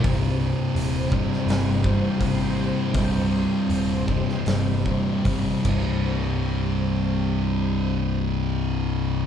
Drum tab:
CC |----------------|--------------x-|----------------|
HH |o---o---o---o---|o---o---o---o---|----------------|
SD |-------oo-------|-------oo-------|----------------|
BD |o-----o---o-o---|o-----o---o-o-o-|----------------|